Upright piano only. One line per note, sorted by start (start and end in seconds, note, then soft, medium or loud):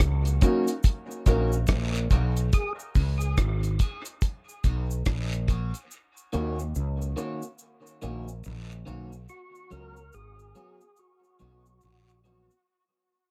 0.42 0.69 C#4 medium
0.42 0.69 D#4 medium
0.42 0.67 F#4 medium
0.42 0.68 A#4 loud
0.69 0.75 F#4 soft
0.69 0.75 A#4 soft
1.26 1.53 C#4 medium
1.26 1.54 D#4 medium
1.26 1.54 F#4 medium
1.26 1.54 A#4 loud
2.11 2.38 C#4 medium
2.11 2.38 D#4 medium
2.11 2.38 F#4 medium
2.11 2.38 A#4 medium
2.96 3.23 C#4 medium
2.96 3.23 F#4 medium
2.96 3.23 G#4 medium
2.96 3.23 B4 medium